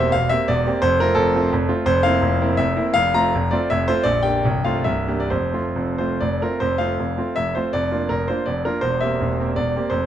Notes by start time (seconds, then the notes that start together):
Already playing: E1 E2 A#3 C4 C5 E5
0.00 G4
0.12 E1 E2 F5
0.29 A#3 C4 G4 E5
0.48 E1 E2 D5
0.66 A#3 C4 G4
0.82 F1 F2 C5
1.00 A3 C4 F4 A#4
1.15 F1 F2 A4
1.35 A3 C4 F4
1.52 F1 F2
1.68 A3 C4 F4
1.86 F1 F2 C5
2.03 A#3 C4 E4 F5
2.22 F1 F2
2.41 A#3 C4 E4
2.57 F1 F2 E5
2.76 A#3 C4 E4
2.94 F1 F2 F5
3.14 A3 C4 F4 A#5
3.35 F1 F2
3.51 A3 C4 F4 D5
3.70 F1 F2 E5
3.88 A3 C4 F4 C5
4.04 A#0 A#1 D5
4.23 A#3 D4 G4 G5
4.45 C1 C2
4.64 A3 C4 F4 F5
4.84 C1 C2 E5
5.07 A#3 D4 G4
5.20 D5
5.30 F1 F2 C5
5.53 A3 C4 F4
5.76 F1 F2
5.98 A3 C4 F4 C5
6.21 F1 F2 D5
6.42 A3 C4 F4 A#4
6.60 F1 F2 C5
6.78 A3 C4 F4 F5
6.99 F1 F2
7.18 A3 C4 F4
7.36 F1 F2 E5
7.55 A3 C4 F4 C5
7.73 F1 F2 D5
7.91 A#3 D4 F4
8.09 F1 F2 A#4
8.28 A#3 D4 F4 C5
8.46 F1 F2 D5
8.65 A#3 D4 F4 A#4
8.81 E1 E2 C5
9.01 A#3 C4 G4 E5
9.21 E1 E2
9.39 A#3 C4 G4
9.56 E1 E2 D5
9.76 A#3 C4 G4
9.90 F1 F2 C5